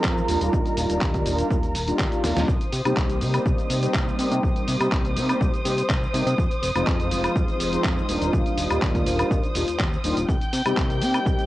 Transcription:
Already playing: F3 G#3 C4 D#4 F4 A#4 A#5
0.04 F2, kick, clap, shaker
0.17 shaker
0.28 D#1 G3 A#3 D4 D#4 F4, open hi-hat, shaker
0.41 D#1, closed hi-hat, shaker
0.53 D#2, kick, shaker
0.66 closed hi-hat, shaker
0.77 D#1, open hi-hat, shaker
0.90 D#1 G3 A#3 D4 D#4 F4, closed hi-hat, shaker
1.01 D#2, kick, clap, shaker
1.14 kick, closed hi-hat, shaker
1.26 D#1 G3 A#3 D4 D#4 F4, open hi-hat, shaker
1.39 G3 A#3 D4 D#4 F4, closed hi-hat, shaker
1.50 D#2 G3 A#3 D4 D#4 F4, kick, shaker
1.63 closed hi-hat, shaker
1.75 D#1, open hi-hat, shaker
1.87 G3 A#3 D4 D#4 F4, closed hi-hat, shaker
1.99 D#2, kick, clap, shaker
2.12 G3 A#3 D4 D#4 F4, closed hi-hat, shaker
2.24 D#1, snare, open hi-hat, shaker
2.36 D#1 G3 A#3 D4 D#4 F4, snare, closed hi-hat, shaker
2.48 C2 C5 D#6, kick, shaker
2.61 closed hi-hat, shaker
2.72 C3, open hi-hat, shaker
2.85 C3 G3 A#3 C4 D#4 G4, closed hi-hat, high woodblock, shaker
2.97 C2, kick, clap, shaker
3.10 closed hi-hat, shaker
3.21 C3 G3 A#3 C4 D#4 G4, open hi-hat, shaker
3.33 G3 A#3 C4 D#4 G4, closed hi-hat, high woodblock, shaker
3.45 C2 G3 A#3 C4 D#4 G4, kick, shaker
3.58 closed hi-hat, shaker
3.70 C3, open hi-hat, shaker
3.82 G3 A#3 C4 D#4 G4, closed hi-hat, shaker
3.94 C2, kick, clap, shaker
4.08 shaker
4.18 C3 G3 A#3 C4 D#4 G4, open hi-hat, shaker
4.32 C3, closed hi-hat, shaker
4.43 C2, kick, shaker
4.56 closed hi-hat, shaker
4.68 C3, open hi-hat, shaker
4.80 C3 G3 A#3 C4 D#4 G4, closed hi-hat, high woodblock, shaker
4.92 C2, kick, clap, shaker
5.05 closed hi-hat, shaker
5.16 C3 G3 A#3 C4 D#4 G4, open hi-hat, shaker
5.29 G3 A#3 C4 D#4 G4, closed hi-hat, high woodblock, shaker
5.40 C2 G3 A#3 C4 D#4 G4, kick, shaker
5.54 closed hi-hat, shaker
5.65 C3 G3 A#3 C4 D#4 G4, open hi-hat, shaker
5.78 closed hi-hat, shaker
5.90 C2, kick, clap, shaker
6.03 shaker
6.13 C3 G3 A#3 C4 D#4 G4, open hi-hat, shaker
6.26 C3, closed hi-hat, shaker
6.38 F2, kick, shaker
6.51 closed hi-hat, shaker
6.63 F1, open hi-hat, shaker
6.75 F1 F3 G#3 C4 D#4 F4, closed hi-hat, high woodblock, shaker
6.87 F2, kick, clap, shaker
7.00 closed hi-hat, shaker
7.11 F1 F3 G#3 C4 D#4 F4, open hi-hat, shaker
7.24 F3 G#3 C4 D#4 F4, closed hi-hat, high woodblock, shaker
7.35 F2 F3 G#3 C4 D#4 F4, kick, shaker
7.48 closed hi-hat, shaker
7.60 F1, open hi-hat, shaker
7.72 F3 G#3 C4 D#4 F4, closed hi-hat, shaker
7.85 F2, kick, clap, shaker
7.98 shaker
8.08 D#1 G3 A#3 D4 D#4 F4, open hi-hat, shaker
8.22 D#1, closed hi-hat, shaker
8.33 D#2, kick, shaker
8.46 closed hi-hat, shaker
8.58 D#1, open hi-hat, shaker
8.70 D#1 G3 A#3 D4 D#4 F4, closed hi-hat, high woodblock, shaker
8.82 D#2, kick, clap, shaker
8.95 kick, closed hi-hat, shaker
9.06 D#1 G3 A#3 D4 D#4 F4, open hi-hat, shaker
9.19 G3 A#3 D4 D#4 F4, closed hi-hat, high woodblock, shaker
9.31 D#2 G3 A#3 D4 D#4 F4, kick, shaker
9.44 closed hi-hat, shaker
9.55 D#1 G3 A#3 D4 D#4 F4, open hi-hat, shaker
9.68 D#2, closed hi-hat, shaker
9.80 D#2, kick, clap, shaker
9.93 shaker
10.04 D#1 G3 A#3 D4 D#4 F4, open hi-hat, shaker
10.17 D#1, closed hi-hat, shaker
10.29 C2 G5 G6, kick, shaker
10.41 closed hi-hat, shaker
10.53 C3, open hi-hat, shaker
10.65 C3 G3 A#3 C4 D#4 G4, closed hi-hat, high woodblock, shaker
10.77 C2, kick, clap, shaker
10.90 closed hi-hat, shaker
11.01 C3 G3 A#3 C4 D#4 G4, open hi-hat, shaker
11.14 G3 A#3 C4 D#4 G4, closed hi-hat, high woodblock, shaker
11.26 C2 G3 A#3 C4 D#4 G4, kick, shaker
11.39 closed hi-hat, shaker

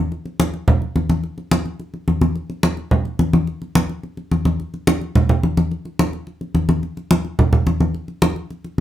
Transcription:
0.12 high conga
0.26 high conga
0.40 high conga
0.54 high conga
0.68 high conga, low conga
0.82 high conga
0.96 high conga
1.10 high conga
1.24 high conga
1.38 high conga
1.51 high conga
1.66 high conga
1.80 high conga
1.94 high conga
2.08 high conga
2.21 high conga
2.35 high conga
2.50 high conga
2.63 high conga
2.77 high conga
2.91 high conga, low conga
3.05 high conga
3.19 high conga
3.33 high conga
3.47 high conga
3.62 high conga
3.75 high conga
3.89 high conga
4.03 high conga
4.17 high conga
4.32 high conga
4.45 high conga
4.60 high conga
4.74 high conga
4.87 high conga
5.01 high conga
5.15 high conga, low conga
5.29 high conga, low conga
5.43 high conga
5.57 high conga
5.71 high conga
5.85 high conga
5.99 high conga
6.13 high conga
6.27 high conga
6.41 high conga
6.55 high conga
6.69 high conga
6.83 high conga
6.97 high conga
7.11 high conga
7.25 high conga
7.39 high conga, low conga
7.53 high conga, low conga
7.67 high conga
7.80 high conga
7.95 high conga
8.08 high conga
8.22 high conga
8.36 high conga
8.50 high conga
8.64 high conga

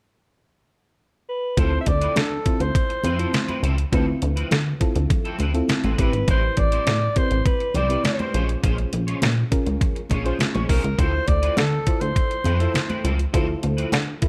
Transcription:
1.29 B4
1.57 D2 F3 C4 E4 F4 A4 C5, kick, closed hi-hat, muted conga
1.72 muted clean electric guitar stroke
1.81 E5
1.86 D2 D5, muted clean electric guitar stroke, kick, closed hi-hat, muted conga
2.01 F3 C4 E4 B4, closed hi-hat
2.16 D3 A4, muted clean electric guitar stroke, snare, closed hi-hat, high conga
2.31 muted clean electric guitar stroke
2.45 C4 E4 F4 C5, kick, closed hi-hat
2.60 D2 C5, muted clean electric guitar stroke, closed hi-hat
2.75 muted clean electric guitar stroke, kick, closed hi-hat, muted conga
2.90 muted clean electric guitar stroke, closed hi-hat
3.04 F2 F3 C4 E4 B4, closed hi-hat, muted conga, low conga
3.19 F3 C4 E4 F4 A4 C5, closed hi-hat
3.33 muted clean electric guitar stroke, snare, closed hi-hat, high conga
3.48 F3 C4 E4 B4, closed hi-hat, high conga
3.63 C#2 F3 C4 E4 A4, closed hi-hat
3.77 muted clean electric guitar stroke, closed hi-hat
3.92 D2 F3 C4 E4 F4 A4 B4, kick, closed hi-hat, muted conga
4.07 muted clean electric guitar stroke
4.21 D2, muted clean electric guitar stroke, closed hi-hat, muted conga
4.36 F3 C4 E4 B4, closed hi-hat
4.51 D3, muted clean electric guitar stroke, snare, closed hi-hat, high conga
4.65 muted clean electric guitar stroke
4.80 C4 E4 F4 A4, kick, closed hi-hat
4.95 D2, muted clean electric guitar stroke, closed hi-hat
5.10 muted clean electric guitar stroke, kick, closed hi-hat, muted conga, low conga
5.25 F3 C4 E4 A4, closed hi-hat
5.39 D2 F3 C4 E4 B4, closed hi-hat, muted conga
5.54 C4 E4 F4 A4, muted clean electric guitar stroke, closed hi-hat
5.68 muted clean electric guitar stroke, snare, closed hi-hat, high conga
5.84 A1 F3 C4 E4 B4, closed hi-hat, high conga
5.98 A1 G3 C4 E4 G4 B4, kick, closed hi-hat
6.13 G#1, muted clean electric guitar stroke, closed hi-hat
6.27 A1 G3 C4 E4 B4 C5, kick, closed hi-hat, muted conga
6.42 muted clean electric guitar stroke
6.57 A1 D5, muted clean electric guitar stroke, kick, closed hi-hat
6.72 G3 C4 E4 C5, closed hi-hat
6.87 A2, muted clean electric guitar stroke, snare, closed hi-hat, high conga
7.02 muted clean electric guitar stroke
7.16 C4 E4 G4 A#4 C5, kick, closed hi-hat
7.23 B4
7.31 A1, muted clean electric guitar stroke, closed hi-hat
7.46 B4, muted clean electric guitar stroke, kick, closed hi-hat, muted conga
7.60 muted clean electric guitar stroke, closed hi-hat
7.74 C2 G3 C4 E4 C5 D5, closed hi-hat, muted conga, low conga
7.90 G3 C4 E4 G4 B4, closed hi-hat
8.04 C5, snare, closed hi-hat, high conga
8.19 G3 C4 E4 C5, closed hi-hat, high conga
8.34 A#1 G#3 C#4 F4 G#4 C5, closed hi-hat
8.49 muted clean electric guitar stroke, closed hi-hat
8.63 A#1 G#3 C#4 F4 C5, kick, closed hi-hat, muted conga
8.78 muted clean electric guitar stroke, closed hi-hat
8.93 A#1, muted clean electric guitar stroke, closed hi-hat
9.07 G#3 C#4 F4 C#5, closed hi-hat
9.22 A#2, snare, closed hi-hat, high conga
9.36 muted clean electric guitar stroke
9.51 C#4 F4 G#4 A#4, kick, closed hi-hat
9.66 C#2, muted clean electric guitar stroke, closed hi-hat
9.81 muted clean electric guitar stroke, kick, closed hi-hat, muted conga, low conga
9.96 muted clean electric guitar stroke, closed hi-hat
10.10 A#1 G#3 C#4 F4 C#5, kick, closed hi-hat, muted conga
10.25 G#3 C#4 F4 G#4 C5, closed hi-hat
10.39 muted clean electric guitar stroke, snare, closed hi-hat, high conga
10.54 A#1 G#3 C#4 F4 C#5, closed hi-hat, high conga
10.69 C2 G#3 C#4 F4 A#4 C5, kick, open hi-hat
10.83 C#2, muted clean electric guitar stroke, closed hi-hat
10.98 D2 F3 C4 E4 F4 A4 C5, kick, closed hi-hat, muted conga
11.13 muted clean electric guitar stroke
11.27 D2 D5, muted clean electric guitar stroke, kick, closed hi-hat
11.42 F3 C4 E4 B4, closed hi-hat
11.57 D3 A4, muted clean electric guitar stroke, snare, closed hi-hat, high conga
11.71 muted clean electric guitar stroke
11.87 E4 F4 A4 C5, kick, closed hi-hat
12.01 D2 C5, muted clean electric guitar stroke, closed hi-hat
12.15 muted clean electric guitar stroke, kick, closed hi-hat, muted conga
12.30 muted clean electric guitar stroke, closed hi-hat
12.44 F2 F3 C4 E4 B4, closed hi-hat, muted conga, low conga
12.60 F3 C4 E4 F4 A4 C5, closed hi-hat
12.74 muted clean electric guitar stroke, snare, closed hi-hat, high conga
12.89 F3 C4 E4 B4, closed hi-hat, high conga
13.04 C#2 F3 C4 E4 A4, closed hi-hat
13.18 muted clean electric guitar stroke, closed hi-hat
13.33 D2 F3 C4 E4 F4 A4 C5, kick, closed hi-hat, muted conga
13.48 muted clean electric guitar stroke
13.63 D2, muted clean electric guitar stroke, closed hi-hat, muted conga
13.77 F3 C4 E4 B4, closed hi-hat
13.92 D3, muted clean electric guitar stroke, snare, closed hi-hat, high conga
14.06 muted clean electric guitar stroke
14.22 E4 F4 A4 B4, kick, closed hi-hat

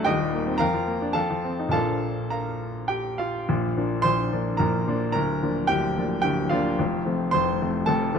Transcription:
0.05 D#1 D#2 G4 D#5 G5
0.20 G3
0.34 A#3
0.47 C4
0.58 F2 A#4 F5 A#5
0.74 F3
0.88 A#3
1.02 D4
1.13 F2 A4 F5 A5
1.30 F3
1.44 C4
1.59 D#4
1.69 A#1 A#2 F3 A#3 D4 A4 F5 A5
2.30 A#4 F5 A#5
2.88 G4 G5
3.18 F4 F5
3.49 A#1 A#2
3.77 F3 A#3 D4
4.02 A#1 A#2 C5 C6
4.32 F3 A#3 D4
4.57 A#1 A#2 A#4 A#5
4.87 F3 A#3 D4
5.12 D1 D2 A#4 A#5
5.43 F3 A#3 D4
5.67 D1 D2 G4 G5
5.98 F3 A#3 D4
6.22 D1 D2 G4 G5
6.49 F3 A#3 D4 F4 F5
6.79 F1 F2
7.05 F3 A3 C4
7.31 F1 F2 C5 C6
7.61 F3 A3 C4
7.86 F1 F2 A4 A5
8.15 F3 A3 C4

